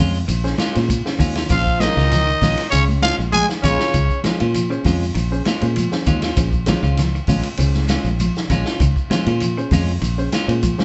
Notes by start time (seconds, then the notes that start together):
Already playing: C#3 G#3
0.00 F2 C#4 F4
0.15 shekere
0.28 A#1 D#3, ride bell, high conga, shekere
0.44 C#4 G#4 C5, snare, shekere
0.58 D#3 G#3 C#4 F4, snare, ride bell, high conga, shekere
0.75 A#2 C#4 G#4 C5, snare, ride bell, shekere
0.89 C#3, kick, ride bell, high conga, shekere
1.06 C#4 G#4 C5, snare, shekere
1.19 D#2 D#3 G#3 C#4 F4, kick, open hi-hat, low conga, shekere
1.35 C#4 F4, snare, ride bell, shekere
1.49 A#1 D#3 F3 C#4 F4 G#4 C5 F5, kick, ride bell, high conga, shekere
1.66 kick, shekere
1.80 D#3 F3 G#3 C#4 D#4 F4 G#4 C5 D#5, snare, ride bell, high conga, shekere
1.97 C#2 D#3 C#4 F4, snare, shekere
2.11 F3, snare, ride bell, high conga, low conga, shekere
2.27 D#3, shekere
2.42 A#1 C#3 G#3 C#4 F4, kick, snare, open hi-hat, high conga, low conga, shekere
2.58 snare, ride bell, shekere
2.70 C#2 C#3 D#3 C#4 G#4 C#5, ride bell, high conga, shekere
2.88 high conga, shekere
3.01 D#3 F3 G#3 C#4 F4 F5, snare, ride bell, high conga, shekere
3.19 A#1, shekere
3.31 F3 G#3 G#4 G#5, ride bell, high conga, shekere
3.49 snare, shekere
3.62 A#1 C#3 D#3 G#3 C#4 F4 C#5, kick, ride bell, low conga, shekere
3.79 F4, snare, shekere
3.94 C#2 D#3, kick, ride bell, high conga, shekere
4.10 kick, shekere
4.24 F3 G#3 C#4 F4 G#4 C5, muted fingered electric bass stroke, snare, ride bell, high conga, shekere
4.40 A#2 D#3 C#4 F4, ride bell, shekere
4.54 F3, ride bell, high conga, shekere
4.70 D#3 C#4 G#4 C5, shekere
4.84 F2 C#3 G#3 C#4 F4, kick, open hi-hat, high conga, low conga, shekere
5.03 shekere
5.15 A#1 D#3, ride bell, high conga, shekere
5.32 C#4 G#4 C5, shekere
5.45 D#3 G#3 C#4 F4, snare, ride bell, high conga, shekere
5.61 A#2 C#4 G#4 C5, ride bell, shekere
5.76 F3, ride bell, high conga, shekere
5.92 C#4 G#4 C5, snare, shekere
6.06 D#2 D#3 G#3 C#4 F4, kick, ride bell, low conga, shekere
6.21 C#4 F4, snare, ride bell, shekere
6.36 A#1 D#3 C#4 G#4 C5, kick, snare, ride bell, high conga, shekere
6.53 kick, shekere
6.66 F3 G#3 C#4 F4 G#4 C5, snare, ride bell, high conga, low conga, shekere
6.83 C#2 D#3 C#4 F4, shekere
6.97 F3, snare, ride bell, high conga, low conga, shekere
7.15 D#3, shekere
7.27 A#1 C#3 G#3 C#4 F4, kick, open hi-hat, high conga, low conga, shekere
7.43 ride bell, shekere
7.57 C#2 D#3 C#4 G#4 C5, ride bell, high conga, shekere
7.74 snare, high conga, shekere
7.88 D#3 G#3 C#4 F4, snare, ride bell, high conga, shekere
8.04 A#1, shekere
8.20 F3, ride bell, high conga, shekere
8.36 snare, shekere
8.50 A#1 D#3 G#3 C#4 F4, kick, snare, ride bell, low conga, shekere
8.66 C#4 F4, snare, shekere
8.80 C#2 D#3, kick, ride bell, high conga, shekere
8.96 kick, shekere
9.10 F3 G#3 C#4 F4 G#4 C5, muted fingered electric bass stroke, snare, ride bell, high conga, low conga, shekere
9.26 A#2 D#3 C#4 F4, ride bell, shekere
9.40 F3, ride bell, high conga, shekere
9.57 D#3 C#4 G#4 C5, shekere
9.71 F2 C#3 G#3 C#4 F4, kick, open hi-hat, high conga, low conga, shekere
9.88 shekere
10.02 A#1 D#3, ride bell, high conga, shekere
10.18 C#4 G#4 C5, shekere
10.32 D#3 G#3 C#4 F4, snare, ride bell, high conga, shekere
10.48 A#2 C#4 G#4 C5, ride bell, shekere
10.63 F3, kick, ride bell, high conga, shekere
10.78 C#4 G#4 C5, snare, high conga, shekere